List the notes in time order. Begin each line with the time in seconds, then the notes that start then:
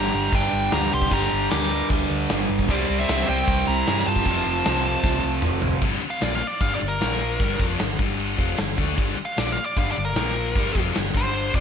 Already playing: G2 D3 G3 G4 A#5
0.13 G1 G2 D3 G3, open hi-hat
0.32 G1 D4 G5, kick, open hi-hat
0.52 G1, open hi-hat
0.71 D2 G4 A#5, snare, open hi-hat
0.92 C2 G4 C6, open hi-hat
1.02 kick
1.11 G1 G2 D3 G3 G4 A#5, kick, open hi-hat
1.31 G1, open hi-hat
1.51 D2 A#4 D6, snare, open hi-hat
1.71 G2 D3 G3, open hi-hat
1.90 D2, kick, open hi-hat
2.09 D2, open hi-hat
2.29 G1, snare, open hi-hat
2.49 G1, open hi-hat
2.59 kick
2.68 C2 C3 G3 C4 D5, kick, open hi-hat
2.88 C2, open hi-hat
3.00 C4 E5
3.09 C2, snare
3.27 C2 C3 G3 C4 G5, open hi-hat
3.31 C4
3.48 C2, kick, open hi-hat
3.67 C2 E4 A#5, open hi-hat
3.87 G2, snare, open hi-hat
4.06 G2 F4 A5, open hi-hat
4.16 kick
4.25 F1 F2 C3 F3, kick, open hi-hat
4.45 F1, open hi-hat
4.65 C2, snare, open hi-hat
4.84 F2 C3 F3, open hi-hat
5.04 C2, kick, snare
5.24 C2
5.42 F1, mid tom
5.62 F1, floor tom
5.81 G1 G2 D3 G3, kick, crash
6.01 muted overdriven electric guitar stroke, crash
6.10 F5
6.21 A#1 A#2 F3 A#3 D5, snare, crash
6.35 F5
6.41 muted overdriven electric guitar stroke, crash
6.47 D5
6.61 G1 G2 D3 G3 F5, kick, crash
6.75 D5
6.81 G1 G2 D3, crash
6.88 A#4
7.01 A#1 A#2 F3 A#3, snare, crash
7.21 crash
7.40 G1 G2 D3 G3, kick, crash
7.59 F1 F2 C3 F3, kick, crash
7.79 G1 G2 D3, snare, crash
7.99 G1 G2 D3 G3, kick, crash
8.19 crash
8.37 F1 F2 C3 F3, kick, crash
8.58 G1 G2 D3, snare, crash
8.77 D2 D3 A3 D4, kick, crash
8.96 G1 G2 D3 G3, kick, crash
9.18 muted overdriven electric guitar stroke, crash
9.25 F5
9.37 A#1 A#2 F3 A#3 D5, snare, crash
9.52 F5
9.57 muted overdriven electric guitar stroke, crash
9.65 D5
9.77 G1 G2 D3 G3 F5, kick, crash
9.91 D5
9.96 G1 G2 D3, crash
10.05 A#4
10.15 A#1 A#2 F3 A#3, snare, crash
10.36 crash
10.55 G1 G2 D3 G3, kick, crash
10.75 F1 F2 C3 F3, kick, crash
10.95 G1 G2 D3, snare, crash
11.14 G1 G2 D3 G3 C5, kick, crash
11.34 crash
11.54 F1 F2 C3 F3 D5, kick, crash